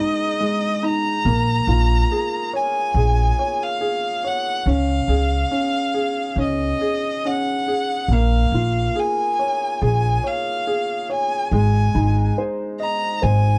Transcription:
Already playing: felt piano G#3, violin D#5
0.00 felt piano D#4
0.40 felt piano G#3
0.83 felt piano D#4, violin A#5
1.25 upright bass A#1, felt piano A#3
1.67 upright bass A#1, felt piano F4
2.12 felt piano G#4
2.54 felt piano C#5, violin G#5
2.94 upright bass A#1, felt piano G#4
3.39 felt piano C#5
3.63 violin F5
3.81 felt piano G#4
4.24 felt piano C#5, violin F#5
4.66 upright bass C#2, felt piano C#4, violin F5
5.08 upright bass C#2, felt piano G#4
5.51 felt piano C#4
5.94 felt piano G#4
6.36 upright bass C#2, felt piano C#4
6.42 violin D#5
6.81 felt piano G#4
7.25 felt piano C#4, violin F#5
7.68 felt piano G#4
8.08 upright bass A#1, felt piano A#3
8.14 violin F5
8.52 upright bass A#1, felt piano F4
8.96 felt piano G#4, violin G#5
9.39 felt piano C#5
9.82 upright bass A#1, felt piano G#4, violin G#5
10.24 felt piano C#5, violin F5
10.67 felt piano G#4
11.10 felt piano C#5, violin G#5
11.51 upright bass G#1, felt piano G#3, violin G#5
11.95 upright bass G#1, felt piano D#4
12.38 felt piano C5
12.80 felt piano D#5, violin A#5
13.22 upright bass G#1, felt piano C5, violin G#5

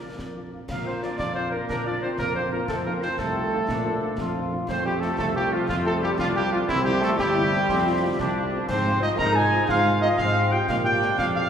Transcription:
Already playing: trombone section D4, flute section A#4, cornet A#4, woodwind section A#4 D5
0.02 french horn section F3 D4 F4
0.18 tuba F2, concert bass drum, snare
0.35 french horn section F3 D4 F4
0.52 french horn section F3 D4 F4
0.68 tuba A#2, trombone section A#3, euphonium F4, cornet F5, flute section F5, woodwind section F5, concert bass drum, snare, crash
0.85 french horn section F3 D4 F4, euphonium C4, flute section C5, cornet C5, woodwind section C5
1.02 french horn section F3 D4 F4, euphonium D4, flute section D5, cornet D5, woodwind section D5, snare
1.16 tuba F2, euphonium D4, trombone section F4, cornet D5, flute section D5, woodwind section D5, concert bass drum, snare
1.34 french horn section F3 D4 F4, euphonium C4, cornet C5, woodwind section C5, flute section C5
1.51 french horn section F3 D4 F4, euphonium A#3, cornet A#4, flute section A#4, woodwind section A#4
1.68 tuba A#2, euphonium A#3, trombone section D4, flute section A#4, cornet A#4, woodwind section A#4, concert bass drum, snare
1.86 french horn section F3 D4 F4, euphonium D4, cornet D5, flute section D5, woodwind section D5
2.02 french horn section F3 D4 F4, euphonium C4, cornet C5, flute section C5, woodwind section C5
2.18 tuba F2, trombone section A#3, euphonium A#3, flute section A#4, cornet A#4, woodwind section A#4, concert bass drum, snare
2.35 french horn section F3 D4 F4, euphonium C4, woodwind section C5, flute section C5, cornet C5
2.51 french horn section F3 D4 F4, euphonium A#3, woodwind section A#4, cornet A#4, flute section A#4
2.68 tuba F2, euphonium A3, trombone section C4, flute section A4, woodwind section A4, cornet A4, concert bass drum, snare, crash
2.84 french horn section F3 D#4 F4, euphonium A#3, woodwind section A#4, flute section A#4, cornet A#4
3.01 french horn section F3 D#4 F4, euphonium C4, flute section C5, woodwind section C5, cornet C5, snare
3.18 tuba C2, euphonium A3, trombone section C4, woodwind section A4, cornet A4, flute section A4, concert bass drum, snare
3.36 french horn section F3 D#4 F4
3.51 french horn section F3 D#4 F4
3.69 tuba A#2, trombone section D4, concert bass drum, snare
3.85 french horn section F3 D4 F4
4.01 french horn section F3 D4 F4
4.18 tuba F2, trombone section F4, concert bass drum, snare
4.35 french horn section F3 D4 F4
4.52 french horn section F3 D4 F4
4.68 tuba F2, trombone section A3, euphonium C4, cornet C5, flute section C5, woodwind section C5, concert bass drum, snare, crash
4.85 euphonium G3, french horn section A3 C4 F4, flute section G4, cornet G4, woodwind section G4
5.01 euphonium A3, french horn section A3 C4 F4, cornet A4, flute section A4, woodwind section A4, snare
5.18 tuba C2, euphonium A3, cornet A4, flute section A4, woodwind section A4, concert bass drum, snare
5.34 euphonium G3, french horn section A3 C4 F4, flute section G4, cornet G4, woodwind section G4
5.52 euphonium F3, french horn section A3 C4 F4, flute section F4, cornet F4, woodwind section F4
5.68 tuba F2, euphonium F3, trombone section C4, flute section F4, woodwind section F4, cornet F4, concert bass drum, snare
5.84 euphonium A3, french horn section A3 C4 F4, flute section A4, woodwind section A4, cornet A4
6.00 euphonium G3, french horn section A3 C4 F4, flute section G4, cornet G4, woodwind section G4
6.16 tuba C2, euphonium F3, trombone section D4, flute section F4, woodwind section F4, cornet F4, concert bass drum, snare
6.34 euphonium G3, french horn section A3 C4 F4, flute section G4, woodwind section G4, cornet G4
6.51 euphonium F3, french horn section A3 C4 F4, flute section F4, cornet F4, woodwind section F4
6.68 tuba C2, euphonium E3, trombone section C4, woodwind section E4, flute section E4, cornet E4, concert bass drum, snare, crash
6.83 euphonium G3, french horn section A#3 C4 E4, flute section G4, cornet G4, woodwind section G4
7.00 euphonium A3, french horn section A#3 C4 E4, flute section A4, woodwind section A4, cornet A4, snare
7.16 tuba G1, euphonium G3, trombone section E4, flute section G4, woodwind section G4, cornet G4, concert bass drum, snare
7.35 french horn section A#3 C4 E4
7.51 french horn section A#3 C4 E4
7.68 tuba F2, trombone section C4, concert bass drum, snare
7.85 french horn section A3 C4 F4
8.01 french horn section A3 C4 F4
8.19 tuba C2, trombone section D4, concert bass drum, snare
8.35 french horn section A3 C4 F4
8.52 french horn section A3 C4 F4
8.67 tuba G#2, trombone section C4, euphonium C4, flute section C5, cornet C5, woodwind section C5, concert bass drum, snare, crash
8.84 french horn section G#3 C4 F4
9.01 french horn section G#3 C4 F4, euphonium D#4, flute section D#5, cornet D#5, woodwind section D#5, snare
9.17 tuba G#2, trombone section D#4, euphonium A#4, flute section A#5, cornet A#5, woodwind section A#5, concert bass drum, snare
9.33 french horn section G#3 C4 F4, euphonium G#4, flute section G#5, cornet G#5, woodwind section G#5
9.52 french horn section G#3 C4 F4
9.68 tuba G#2, euphonium F4, trombone section F4, flute section F5, cornet F5, woodwind section F5, concert bass drum, snare
9.86 french horn section G#3 C4 F4
10.01 french horn section G#3 C4 F4, euphonium D#4, flute section D#5, cornet D#5, woodwind section D#5
10.18 tuba G#2, trombone section C4, euphonium F4, flute section F5, cornet F5, woodwind section F5, concert bass drum, snare
10.35 french horn section G#3 C4 F4
10.50 french horn section G#3 C4 F4, euphonium G4, flute section G5, cornet G5, woodwind section G5
10.68 tuba A#2, trombone section D4, euphonium F4, flute section F5, cornet F5, woodwind section F5, concert bass drum, snare, crash
10.84 french horn section G#3 A#3 F4, euphonium G4, flute section G5, cornet G5, woodwind section G5
11.01 french horn section G#3 A#3 F4, snare
11.16 tuba F2, euphonium F4, flute section F5, cornet F5, woodwind section F5, concert bass drum, snare
11.34 french horn section G#3 A#3 F4, euphonium F4, flute section F5, cornet F5, woodwind section F5

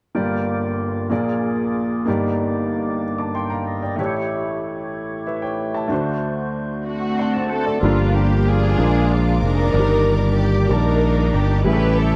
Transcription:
0.15 grand piano G1 G2 A#3 F4 G4 D5, tonewheel organ A#3 F4 G4 D5
1.10 grand piano A#1 A#2 A#3 F4 G#4 D5, tonewheel organ A#3 F4 G#4 D5
2.05 grand piano G1 G2 A#3 D#4 G4, tonewheel organ G2 A#3 D#4 G4 D5
2.09 grand piano D5
3.18 grand piano A5 D6
3.35 grand piano G5 C6, tonewheel organ G5
3.50 grand piano F5 A#5
3.67 tonewheel organ D#5
3.82 grand piano D5 G5
3.96 grand piano A1 A2 A3 E4 G4, tonewheel organ A3 E4 G4 B4
4.00 grand piano C#5
4.06 tonewheel organ C#5
5.27 grand piano B4 E5
5.42 grand piano C#5 G5
5.74 grand piano E5 A5
5.88 grand piano D2 D3 A3 D4 F#4, tonewheel organ A3 D4 F#4 C5
5.92 grand piano C5
6.87 string section A3 C4 F#4
7.18 grand piano D5 A5, tonewheel organ F#5 C6
7.33 grand piano C5 F#5, tonewheel organ D5 A5
7.49 string section A4, tonewheel organ C5 F#5
7.66 grand piano A4 D5, tonewheel organ A4 D5
7.80 fingered electric bass G1, grand piano G2 G3 D4 F4, tonewheel organ F3 D4 F4 A#4, string section A#3 D4 F4 A#4 F5 G5 D6
7.84 grand piano A#4
8.15 string section G4
8.47 string section D4 F4 G#4
8.78 fingered electric bass A#1, grand piano A#2 G#3 D4 F4 A#4, tonewheel organ F3 A#3 C#4 G#4, string section G#5
8.84 tonewheel organ D5
9.11 string section F4
9.42 fingered electric bass F1, string section D4 D#4 A#4
9.72 fingered electric bass G1, grand piano G2 D#3 F3 A#4 D5, tonewheel organ D#3 A#3 G4 D5, string section D5
9.79 grand piano G3
10.40 string section G4
10.69 fingered electric bass A#1, grand piano D#3 G3 D5 A5, string section D4 D#4 A#4
11.34 fingered electric bass G1, string section G4
11.64 fingered electric bass A1, grand piano A2 G3 C#4 E4 G#4, tonewheel organ E3 G3 A3 B3, string section E4 G4 B4 E5 A5 C#6
11.72 tonewheel organ C#3, grand piano A4
11.98 string section A4

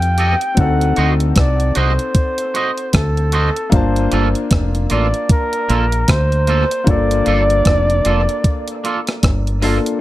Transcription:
Already playing: fingered electric bass F2, grand piano C4 D#4 G4 A4, flugelhorn G5
0.02 closed hi-hat
0.18 clean electric guitar G4 A4 D#5, closed hi-hat
0.41 closed hi-hat
0.55 fingered electric bass D2, grand piano C4 D#4 F#4, kick, closed hi-hat
0.59 grand piano A4, flugelhorn F#5
0.81 closed hi-hat
0.96 fingered electric bass D2, clean electric guitar F#4 C5 D#5, closed hi-hat
1.20 closed hi-hat
1.36 fingered electric bass C2, flugelhorn D5, kick, cross-stick, closed hi-hat
1.60 closed hi-hat
1.75 fingered electric bass C2, clean electric guitar F#4 C5 D#5, flugelhorn C5, closed hi-hat
1.99 closed hi-hat
2.15 kick, closed hi-hat
2.38 closed hi-hat
2.54 clean electric guitar F#4 C5 D#5, closed hi-hat
2.78 closed hi-hat
2.93 fingered electric bass D2, flugelhorn A4, kick, cross-stick, closed hi-hat
3.17 closed hi-hat
3.32 clean electric guitar F#4 C5 D#5, closed hi-hat
3.56 closed hi-hat
3.70 fingered electric bass G1, grand piano A#3 D4, flugelhorn C5, kick, closed hi-hat
3.74 grand piano F4 A5
3.96 closed hi-hat
4.12 fingered electric bass G1, clean electric guitar A#3 F4 A4, closed hi-hat
4.35 closed hi-hat
4.51 fingered electric bass F1, kick, cross-stick, closed hi-hat
4.75 closed hi-hat
4.90 fingered electric bass A1, clean electric guitar A#3 F4 A4, flugelhorn D5, closed hi-hat
5.14 closed hi-hat
5.29 flugelhorn A#4, kick, closed hi-hat
5.53 closed hi-hat
5.69 fingered electric bass A#1, clean electric guitar A#3 F4 A4, closed hi-hat
5.92 closed hi-hat
6.08 fingered electric bass D2, flugelhorn C5, kick, cross-stick, closed hi-hat
6.32 closed hi-hat
6.47 clean electric guitar A#3 F4 A4, closed hi-hat
6.71 closed hi-hat
6.84 fingered electric bass G1, grand piano A#3 D4 F4, kick, closed hi-hat
6.89 grand piano A4, flugelhorn D5
7.11 closed hi-hat
7.26 fingered electric bass G1, clean electric guitar A#3 F4 A4, closed hi-hat
7.50 closed hi-hat
7.65 fingered electric bass F1, kick, cross-stick, closed hi-hat
7.90 closed hi-hat
8.05 fingered electric bass F1, clean electric guitar A#3 F4 A4, closed hi-hat
8.29 closed hi-hat
8.44 kick, closed hi-hat
8.68 closed hi-hat
8.84 clean electric guitar A#3 F4 A4, closed hi-hat
9.07 cross-stick, closed hi-hat
9.23 fingered electric bass G1, kick, cross-stick, closed hi-hat
9.47 closed hi-hat
9.62 grand piano A#3 D4 F4 A4, clean electric guitar A#3 F4 A4, open hi-hat
9.86 closed hi-hat

